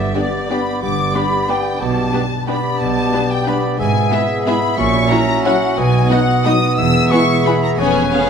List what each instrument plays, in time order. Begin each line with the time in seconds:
Already playing: harp G2 D3 B3 D5, bassoon B3, clarinet G4, oboe D5, flute E5, violin section E5
0.06 harp D4
0.15 viola section B3 D4, bassoon B3, french horn section B3 D4, violin section G4 D5, harp G4, clarinet G4, flute D5, oboe D5
0.25 harp B4
0.41 harp G5
0.49 viola section B3 D4, french horn section B3 D4, bassoon B3, violin section G4 D5 B5, clarinet G4, oboe D5, flute B5
0.67 harp G4
0.75 harp D4
0.82 double bass section G1, cello section G2, harp G2, bassoon B3, clarinet G4, oboe D5, violin section D6, flute D6
0.91 harp D3
0.99 harp B3
1.07 harp D4
1.14 french horn section B3 D4, viola section B3 D4, bassoon B3, violin section G4 D5 B5, harp G4, clarinet G4, oboe D5, flute B5
1.33 harp D5
1.41 harp G5
1.48 french horn section B3 D4, viola section B3 D4, bassoon B3, clarinet G4, violin section G4 D5 G5, oboe D5, harp D5, flute G5
1.58 harp B4
1.74 harp D4
1.81 double bass section B1, harp B2, cello section B2, bassoon B3, clarinet G4, oboe D5, flute A5, violin section A5
1.89 harp G3
1.97 harp B3
2.06 harp D4
2.13 french horn section G3 D4, viola section B3 D4, violin section G4 B4, harp G4
2.23 harp B4
2.31 harp D5
2.40 harp G5
2.48 french horn section G3 D4, viola section B3 D4, bassoon B3, clarinet G4, violin section G4 B4 B5, harp D5, oboe D5, flute B5
2.65 harp G4
2.74 harp D4
2.79 double bass section B1, cello section B2, harp B2, flute A5, violin section A5
2.89 harp G3
3.05 harp D4
3.13 french horn section G3 D4, viola section B3 D4, violin section G4 B4, harp G4
3.22 harp B4
3.31 harp D5, flute G5, violin section G5
3.46 french horn section G3 D4, bassoon B3, viola section B3 D4, violin section G4 B4 B5, clarinet G4, oboe D5, harp D5, flute B5
3.57 harp B4
3.65 harp G4
3.72 harp D4
3.79 double bass section G#1, cello section G#2, harp G#2, bassoon B3, clarinet G#4, oboe E5, violin section G#5, flute G#5
3.88 harp G#3
4.03 harp E4
4.11 french horn section G#3 E4, viola section B3 E4, violin section G#4 E5, flute E5
4.30 harp E5
4.38 harp G#5
4.46 french horn section G#3 E4, viola section B3 E4, violin section G#4 E5 B5, flute B5
4.62 harp G#4
4.71 harp E4
4.77 double bass section A#1, harp A#2, cello section A#2, bassoon C#4, clarinet F#4, violin section C#6, flute C#6
4.85 harp A#3
4.93 harp C#4
5.02 harp E4
5.10 french horn section F#3 E4, viola section C#4 E4, violin section F#4 C#5 A#5, flute A#5
5.28 harp E5
5.36 harp F#5
5.44 french horn section F#3 E4, viola section C#4 E4, violin section F#4 C#5 F#5, harp E5, flute F#5
5.54 harp C#5
5.70 harp E4
5.77 double bass section B1, cello section B2, harp B2, bassoon B3, oboe D#5, violin section G#5, flute G#5
5.86 harp F#3
5.94 harp B3
6.03 harp D#4
6.09 french horn section F#3 D#4, viola section B3 D#4, violin section F#4 D#5 F#5, harp F#4, flute F#5
6.20 harp B4
6.29 harp D#5
6.45 french horn section F#3 D#4, viola section B3 D#4, violin section F#4 D#5 D#6, harp D#5, flute D#6
6.55 harp B4
6.71 harp D#4
6.78 double bass section E1, cello section E2, harp E2, clarinet G#4, oboe E5, violin section E6, flute E6
6.87 harp B2
6.95 harp B3
7.03 harp E4
7.11 french horn section G#3 E4, viola section B3 E4, violin section G#4 B4 C#6, harp G#4, flute C#6
7.21 harp B4
7.30 harp E5
7.39 harp G#5
7.45 french horn section G#3 E4, viola section B3 E4, violin section G#4 B4 B5, harp E5, flute B5
7.63 flute A#5, violin section A#5
7.71 harp E4
7.78 double bass section F1, cello section F2, harp F2, viola section B3 C#4, bassoon C#4, violin section G#4 C#5 G#5, clarinet B4, oboe C#5, flute G#5
7.87 harp F3
7.95 harp B3
8.03 harp C#4
8.12 viola section B3 C#4, french horn section B3 C#4, harp G#4, violin section G#4 C#5 F5, flute F5
8.20 harp B4